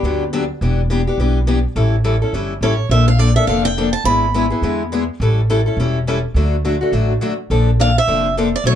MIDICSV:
0, 0, Header, 1, 4, 480
1, 0, Start_track
1, 0, Tempo, 287219
1, 1014, Time_signature, 4, 2, 24, 8
1, 14628, End_track
2, 0, Start_track
2, 0, Title_t, "Steel-string acoustic guitar"
2, 0, Program_c, 0, 25
2, 0, Note_on_c, 0, 71, 66
2, 763, Note_off_c, 0, 71, 0
2, 4392, Note_on_c, 0, 73, 57
2, 4828, Note_off_c, 0, 73, 0
2, 4867, Note_on_c, 0, 76, 83
2, 5138, Note_off_c, 0, 76, 0
2, 5145, Note_on_c, 0, 77, 75
2, 5335, Note_off_c, 0, 77, 0
2, 5335, Note_on_c, 0, 74, 72
2, 5606, Note_off_c, 0, 74, 0
2, 5613, Note_on_c, 0, 76, 75
2, 5797, Note_off_c, 0, 76, 0
2, 5803, Note_on_c, 0, 77, 82
2, 6068, Note_off_c, 0, 77, 0
2, 6100, Note_on_c, 0, 79, 86
2, 6557, Note_off_c, 0, 79, 0
2, 6564, Note_on_c, 0, 81, 85
2, 6768, Note_off_c, 0, 81, 0
2, 6774, Note_on_c, 0, 83, 105
2, 8428, Note_off_c, 0, 83, 0
2, 13053, Note_on_c, 0, 77, 91
2, 13324, Note_off_c, 0, 77, 0
2, 13340, Note_on_c, 0, 76, 82
2, 13951, Note_off_c, 0, 76, 0
2, 14299, Note_on_c, 0, 74, 85
2, 14464, Note_off_c, 0, 74, 0
2, 14485, Note_on_c, 0, 73, 101
2, 14569, Note_off_c, 0, 73, 0
2, 14628, End_track
3, 0, Start_track
3, 0, Title_t, "Steel-string acoustic guitar"
3, 0, Program_c, 1, 25
3, 69, Note_on_c, 1, 50, 66
3, 79, Note_on_c, 1, 59, 65
3, 79, Note_on_c, 1, 62, 67
3, 84, Note_on_c, 1, 54, 69
3, 85, Note_on_c, 1, 67, 65
3, 380, Note_off_c, 1, 50, 0
3, 385, Note_off_c, 1, 59, 0
3, 385, Note_off_c, 1, 62, 0
3, 387, Note_off_c, 1, 54, 0
3, 388, Note_off_c, 1, 67, 0
3, 548, Note_on_c, 1, 50, 81
3, 552, Note_on_c, 1, 54, 87
3, 558, Note_on_c, 1, 59, 75
3, 559, Note_on_c, 1, 62, 89
3, 564, Note_on_c, 1, 67, 74
3, 718, Note_off_c, 1, 50, 0
3, 720, Note_off_c, 1, 54, 0
3, 723, Note_off_c, 1, 59, 0
3, 723, Note_off_c, 1, 62, 0
3, 725, Note_off_c, 1, 67, 0
3, 1035, Note_on_c, 1, 59, 65
3, 1038, Note_on_c, 1, 52, 60
3, 1045, Note_on_c, 1, 62, 73
3, 1049, Note_on_c, 1, 67, 67
3, 1343, Note_off_c, 1, 59, 0
3, 1344, Note_off_c, 1, 52, 0
3, 1347, Note_off_c, 1, 62, 0
3, 1349, Note_off_c, 1, 67, 0
3, 1503, Note_on_c, 1, 52, 76
3, 1512, Note_on_c, 1, 59, 75
3, 1518, Note_on_c, 1, 62, 74
3, 1523, Note_on_c, 1, 67, 92
3, 1675, Note_off_c, 1, 52, 0
3, 1679, Note_off_c, 1, 59, 0
3, 1682, Note_off_c, 1, 62, 0
3, 1685, Note_off_c, 1, 67, 0
3, 1794, Note_on_c, 1, 67, 52
3, 1808, Note_on_c, 1, 62, 51
3, 1822, Note_on_c, 1, 59, 45
3, 1974, Note_off_c, 1, 67, 0
3, 1981, Note_off_c, 1, 62, 0
3, 1982, Note_off_c, 1, 59, 0
3, 1999, Note_on_c, 1, 52, 61
3, 2002, Note_on_c, 1, 59, 62
3, 2014, Note_on_c, 1, 62, 61
3, 2014, Note_on_c, 1, 67, 68
3, 2304, Note_off_c, 1, 52, 0
3, 2305, Note_off_c, 1, 59, 0
3, 2311, Note_off_c, 1, 62, 0
3, 2311, Note_off_c, 1, 67, 0
3, 2458, Note_on_c, 1, 52, 80
3, 2466, Note_on_c, 1, 59, 80
3, 2474, Note_on_c, 1, 62, 75
3, 2482, Note_on_c, 1, 67, 90
3, 2632, Note_off_c, 1, 52, 0
3, 2635, Note_off_c, 1, 59, 0
3, 2639, Note_off_c, 1, 62, 0
3, 2644, Note_off_c, 1, 67, 0
3, 2940, Note_on_c, 1, 52, 68
3, 2942, Note_on_c, 1, 61, 71
3, 2944, Note_on_c, 1, 55, 66
3, 2946, Note_on_c, 1, 69, 73
3, 2953, Note_on_c, 1, 64, 63
3, 3254, Note_off_c, 1, 52, 0
3, 3255, Note_off_c, 1, 61, 0
3, 3256, Note_off_c, 1, 55, 0
3, 3257, Note_off_c, 1, 69, 0
3, 3260, Note_off_c, 1, 64, 0
3, 3413, Note_on_c, 1, 52, 74
3, 3417, Note_on_c, 1, 64, 82
3, 3418, Note_on_c, 1, 55, 72
3, 3427, Note_on_c, 1, 61, 72
3, 3427, Note_on_c, 1, 69, 72
3, 3589, Note_off_c, 1, 52, 0
3, 3591, Note_off_c, 1, 55, 0
3, 3591, Note_off_c, 1, 64, 0
3, 3596, Note_off_c, 1, 61, 0
3, 3596, Note_off_c, 1, 69, 0
3, 3706, Note_on_c, 1, 69, 52
3, 3715, Note_on_c, 1, 64, 48
3, 3734, Note_on_c, 1, 61, 41
3, 3890, Note_off_c, 1, 69, 0
3, 3894, Note_off_c, 1, 64, 0
3, 3896, Note_off_c, 1, 61, 0
3, 3907, Note_on_c, 1, 52, 64
3, 3913, Note_on_c, 1, 55, 63
3, 3916, Note_on_c, 1, 61, 64
3, 3921, Note_on_c, 1, 64, 73
3, 3924, Note_on_c, 1, 69, 64
3, 4217, Note_off_c, 1, 52, 0
3, 4220, Note_off_c, 1, 55, 0
3, 4222, Note_off_c, 1, 61, 0
3, 4224, Note_off_c, 1, 64, 0
3, 4226, Note_off_c, 1, 69, 0
3, 4383, Note_on_c, 1, 52, 68
3, 4388, Note_on_c, 1, 55, 79
3, 4391, Note_on_c, 1, 61, 91
3, 4399, Note_on_c, 1, 64, 84
3, 4399, Note_on_c, 1, 69, 78
3, 4554, Note_off_c, 1, 52, 0
3, 4556, Note_off_c, 1, 55, 0
3, 4558, Note_off_c, 1, 61, 0
3, 4561, Note_off_c, 1, 69, 0
3, 4562, Note_off_c, 1, 64, 0
3, 4869, Note_on_c, 1, 50, 65
3, 4880, Note_on_c, 1, 58, 56
3, 4882, Note_on_c, 1, 53, 60
3, 4885, Note_on_c, 1, 62, 64
3, 4893, Note_on_c, 1, 69, 78
3, 5178, Note_off_c, 1, 50, 0
3, 5183, Note_off_c, 1, 58, 0
3, 5184, Note_off_c, 1, 53, 0
3, 5186, Note_off_c, 1, 62, 0
3, 5190, Note_off_c, 1, 69, 0
3, 5324, Note_on_c, 1, 50, 69
3, 5330, Note_on_c, 1, 53, 71
3, 5336, Note_on_c, 1, 58, 77
3, 5340, Note_on_c, 1, 62, 73
3, 5340, Note_on_c, 1, 69, 79
3, 5503, Note_off_c, 1, 50, 0
3, 5507, Note_off_c, 1, 53, 0
3, 5510, Note_off_c, 1, 58, 0
3, 5512, Note_off_c, 1, 62, 0
3, 5512, Note_off_c, 1, 69, 0
3, 5625, Note_on_c, 1, 69, 48
3, 5637, Note_on_c, 1, 62, 51
3, 5650, Note_on_c, 1, 58, 45
3, 5809, Note_off_c, 1, 69, 0
3, 5813, Note_off_c, 1, 58, 0
3, 5814, Note_off_c, 1, 62, 0
3, 5820, Note_on_c, 1, 50, 64
3, 5830, Note_on_c, 1, 53, 69
3, 5833, Note_on_c, 1, 58, 66
3, 5835, Note_on_c, 1, 69, 68
3, 5839, Note_on_c, 1, 62, 70
3, 6133, Note_off_c, 1, 50, 0
3, 6138, Note_off_c, 1, 53, 0
3, 6140, Note_off_c, 1, 58, 0
3, 6141, Note_off_c, 1, 69, 0
3, 6143, Note_off_c, 1, 62, 0
3, 6311, Note_on_c, 1, 50, 69
3, 6314, Note_on_c, 1, 53, 71
3, 6317, Note_on_c, 1, 62, 99
3, 6319, Note_on_c, 1, 58, 75
3, 6323, Note_on_c, 1, 69, 78
3, 6477, Note_off_c, 1, 50, 0
3, 6479, Note_off_c, 1, 53, 0
3, 6480, Note_off_c, 1, 62, 0
3, 6481, Note_off_c, 1, 58, 0
3, 6483, Note_off_c, 1, 69, 0
3, 6782, Note_on_c, 1, 50, 59
3, 6795, Note_on_c, 1, 56, 58
3, 6798, Note_on_c, 1, 59, 68
3, 6800, Note_on_c, 1, 64, 67
3, 6802, Note_on_c, 1, 68, 61
3, 7094, Note_off_c, 1, 50, 0
3, 7101, Note_off_c, 1, 56, 0
3, 7102, Note_off_c, 1, 59, 0
3, 7103, Note_off_c, 1, 64, 0
3, 7104, Note_off_c, 1, 68, 0
3, 7259, Note_on_c, 1, 56, 85
3, 7260, Note_on_c, 1, 50, 78
3, 7268, Note_on_c, 1, 59, 82
3, 7272, Note_on_c, 1, 68, 92
3, 7278, Note_on_c, 1, 64, 85
3, 7431, Note_off_c, 1, 56, 0
3, 7432, Note_off_c, 1, 50, 0
3, 7436, Note_off_c, 1, 59, 0
3, 7438, Note_off_c, 1, 68, 0
3, 7441, Note_off_c, 1, 64, 0
3, 7525, Note_on_c, 1, 68, 51
3, 7544, Note_on_c, 1, 64, 52
3, 7551, Note_on_c, 1, 59, 46
3, 7719, Note_off_c, 1, 68, 0
3, 7726, Note_off_c, 1, 59, 0
3, 7728, Note_off_c, 1, 64, 0
3, 7734, Note_on_c, 1, 50, 58
3, 7743, Note_on_c, 1, 56, 68
3, 7746, Note_on_c, 1, 59, 67
3, 7750, Note_on_c, 1, 64, 60
3, 7758, Note_on_c, 1, 68, 70
3, 8051, Note_off_c, 1, 50, 0
3, 8055, Note_off_c, 1, 56, 0
3, 8057, Note_off_c, 1, 59, 0
3, 8059, Note_off_c, 1, 64, 0
3, 8063, Note_off_c, 1, 68, 0
3, 8221, Note_on_c, 1, 50, 77
3, 8230, Note_on_c, 1, 56, 78
3, 8236, Note_on_c, 1, 59, 86
3, 8244, Note_on_c, 1, 64, 84
3, 8247, Note_on_c, 1, 68, 81
3, 8393, Note_off_c, 1, 50, 0
3, 8397, Note_off_c, 1, 56, 0
3, 8400, Note_off_c, 1, 59, 0
3, 8404, Note_off_c, 1, 64, 0
3, 8405, Note_off_c, 1, 68, 0
3, 8714, Note_on_c, 1, 52, 70
3, 8716, Note_on_c, 1, 55, 70
3, 8723, Note_on_c, 1, 61, 68
3, 8726, Note_on_c, 1, 64, 64
3, 8734, Note_on_c, 1, 69, 69
3, 9021, Note_off_c, 1, 52, 0
3, 9022, Note_off_c, 1, 55, 0
3, 9026, Note_off_c, 1, 61, 0
3, 9027, Note_off_c, 1, 64, 0
3, 9031, Note_off_c, 1, 69, 0
3, 9185, Note_on_c, 1, 52, 79
3, 9185, Note_on_c, 1, 55, 79
3, 9195, Note_on_c, 1, 64, 81
3, 9199, Note_on_c, 1, 61, 74
3, 9200, Note_on_c, 1, 69, 88
3, 9355, Note_off_c, 1, 52, 0
3, 9355, Note_off_c, 1, 55, 0
3, 9360, Note_off_c, 1, 64, 0
3, 9362, Note_off_c, 1, 61, 0
3, 9362, Note_off_c, 1, 69, 0
3, 9458, Note_on_c, 1, 69, 57
3, 9479, Note_on_c, 1, 64, 45
3, 9488, Note_on_c, 1, 61, 47
3, 9646, Note_off_c, 1, 69, 0
3, 9656, Note_off_c, 1, 64, 0
3, 9661, Note_off_c, 1, 61, 0
3, 9686, Note_on_c, 1, 61, 75
3, 9687, Note_on_c, 1, 52, 59
3, 9692, Note_on_c, 1, 55, 69
3, 9694, Note_on_c, 1, 64, 76
3, 9703, Note_on_c, 1, 69, 65
3, 9987, Note_off_c, 1, 61, 0
3, 9988, Note_off_c, 1, 52, 0
3, 9990, Note_off_c, 1, 55, 0
3, 9991, Note_off_c, 1, 64, 0
3, 9996, Note_off_c, 1, 69, 0
3, 10150, Note_on_c, 1, 52, 74
3, 10158, Note_on_c, 1, 55, 79
3, 10160, Note_on_c, 1, 61, 85
3, 10171, Note_on_c, 1, 64, 91
3, 10173, Note_on_c, 1, 69, 90
3, 10317, Note_off_c, 1, 52, 0
3, 10322, Note_off_c, 1, 55, 0
3, 10323, Note_off_c, 1, 61, 0
3, 10328, Note_off_c, 1, 64, 0
3, 10329, Note_off_c, 1, 69, 0
3, 10629, Note_on_c, 1, 50, 63
3, 10637, Note_on_c, 1, 57, 69
3, 10637, Note_on_c, 1, 62, 65
3, 10638, Note_on_c, 1, 54, 68
3, 10649, Note_on_c, 1, 66, 63
3, 10939, Note_off_c, 1, 50, 0
3, 10943, Note_off_c, 1, 57, 0
3, 10943, Note_off_c, 1, 62, 0
3, 10944, Note_off_c, 1, 54, 0
3, 10949, Note_off_c, 1, 66, 0
3, 11107, Note_on_c, 1, 50, 69
3, 11111, Note_on_c, 1, 54, 76
3, 11116, Note_on_c, 1, 57, 76
3, 11118, Note_on_c, 1, 62, 75
3, 11118, Note_on_c, 1, 66, 81
3, 11276, Note_off_c, 1, 50, 0
3, 11279, Note_off_c, 1, 54, 0
3, 11281, Note_off_c, 1, 57, 0
3, 11282, Note_off_c, 1, 62, 0
3, 11282, Note_off_c, 1, 66, 0
3, 11379, Note_on_c, 1, 66, 55
3, 11403, Note_on_c, 1, 62, 47
3, 11408, Note_on_c, 1, 57, 45
3, 11562, Note_off_c, 1, 57, 0
3, 11563, Note_off_c, 1, 62, 0
3, 11567, Note_off_c, 1, 66, 0
3, 11575, Note_on_c, 1, 50, 67
3, 11582, Note_on_c, 1, 57, 62
3, 11583, Note_on_c, 1, 62, 70
3, 11585, Note_on_c, 1, 54, 68
3, 11591, Note_on_c, 1, 66, 76
3, 11893, Note_off_c, 1, 50, 0
3, 11896, Note_off_c, 1, 57, 0
3, 11896, Note_off_c, 1, 62, 0
3, 11898, Note_off_c, 1, 54, 0
3, 11901, Note_off_c, 1, 66, 0
3, 12051, Note_on_c, 1, 50, 73
3, 12054, Note_on_c, 1, 54, 85
3, 12067, Note_on_c, 1, 57, 83
3, 12070, Note_on_c, 1, 62, 83
3, 12073, Note_on_c, 1, 66, 85
3, 12229, Note_off_c, 1, 50, 0
3, 12230, Note_off_c, 1, 54, 0
3, 12237, Note_off_c, 1, 57, 0
3, 12238, Note_off_c, 1, 62, 0
3, 12240, Note_off_c, 1, 66, 0
3, 12542, Note_on_c, 1, 50, 57
3, 12546, Note_on_c, 1, 58, 62
3, 12550, Note_on_c, 1, 53, 71
3, 12553, Note_on_c, 1, 69, 79
3, 12558, Note_on_c, 1, 62, 65
3, 12857, Note_off_c, 1, 50, 0
3, 12859, Note_off_c, 1, 58, 0
3, 12861, Note_off_c, 1, 53, 0
3, 12862, Note_off_c, 1, 69, 0
3, 12865, Note_off_c, 1, 62, 0
3, 13028, Note_on_c, 1, 50, 78
3, 13032, Note_on_c, 1, 53, 76
3, 13035, Note_on_c, 1, 62, 87
3, 13037, Note_on_c, 1, 69, 82
3, 13040, Note_on_c, 1, 58, 71
3, 13198, Note_off_c, 1, 50, 0
3, 13200, Note_off_c, 1, 53, 0
3, 13202, Note_off_c, 1, 62, 0
3, 13203, Note_off_c, 1, 69, 0
3, 13204, Note_off_c, 1, 58, 0
3, 13492, Note_on_c, 1, 50, 68
3, 13503, Note_on_c, 1, 53, 75
3, 13510, Note_on_c, 1, 62, 68
3, 13511, Note_on_c, 1, 58, 67
3, 13513, Note_on_c, 1, 69, 78
3, 13812, Note_off_c, 1, 50, 0
3, 13818, Note_off_c, 1, 53, 0
3, 13821, Note_off_c, 1, 58, 0
3, 13821, Note_off_c, 1, 62, 0
3, 13823, Note_off_c, 1, 69, 0
3, 13994, Note_on_c, 1, 53, 78
3, 14002, Note_on_c, 1, 50, 85
3, 14006, Note_on_c, 1, 58, 80
3, 14009, Note_on_c, 1, 62, 84
3, 14012, Note_on_c, 1, 69, 94
3, 14161, Note_off_c, 1, 53, 0
3, 14166, Note_off_c, 1, 50, 0
3, 14168, Note_off_c, 1, 58, 0
3, 14169, Note_off_c, 1, 62, 0
3, 14171, Note_off_c, 1, 69, 0
3, 14458, Note_on_c, 1, 47, 62
3, 14462, Note_on_c, 1, 54, 64
3, 14467, Note_on_c, 1, 57, 77
3, 14474, Note_on_c, 1, 62, 65
3, 14476, Note_on_c, 1, 66, 77
3, 14628, Note_off_c, 1, 47, 0
3, 14628, Note_off_c, 1, 54, 0
3, 14628, Note_off_c, 1, 57, 0
3, 14628, Note_off_c, 1, 62, 0
3, 14628, Note_off_c, 1, 66, 0
3, 14628, End_track
4, 0, Start_track
4, 0, Title_t, "Upright bass"
4, 0, Program_c, 2, 32
4, 45, Note_on_c, 2, 38, 74
4, 816, Note_off_c, 2, 38, 0
4, 1021, Note_on_c, 2, 28, 85
4, 1785, Note_off_c, 2, 28, 0
4, 1965, Note_on_c, 2, 35, 74
4, 2735, Note_off_c, 2, 35, 0
4, 2933, Note_on_c, 2, 33, 81
4, 3700, Note_off_c, 2, 33, 0
4, 3886, Note_on_c, 2, 31, 69
4, 4296, Note_off_c, 2, 31, 0
4, 4357, Note_on_c, 2, 33, 71
4, 4771, Note_off_c, 2, 33, 0
4, 4837, Note_on_c, 2, 34, 85
4, 5610, Note_off_c, 2, 34, 0
4, 5802, Note_on_c, 2, 29, 80
4, 6573, Note_off_c, 2, 29, 0
4, 6755, Note_on_c, 2, 32, 78
4, 7529, Note_off_c, 2, 32, 0
4, 7714, Note_on_c, 2, 40, 78
4, 8489, Note_off_c, 2, 40, 0
4, 8687, Note_on_c, 2, 33, 86
4, 9457, Note_off_c, 2, 33, 0
4, 9637, Note_on_c, 2, 28, 81
4, 10411, Note_off_c, 2, 28, 0
4, 10602, Note_on_c, 2, 38, 81
4, 11375, Note_off_c, 2, 38, 0
4, 11565, Note_on_c, 2, 33, 82
4, 11952, Note_off_c, 2, 33, 0
4, 12534, Note_on_c, 2, 34, 82
4, 13303, Note_off_c, 2, 34, 0
4, 13496, Note_on_c, 2, 29, 86
4, 14264, Note_off_c, 2, 29, 0
4, 14435, Note_on_c, 2, 35, 86
4, 14628, Note_off_c, 2, 35, 0
4, 14628, End_track
0, 0, End_of_file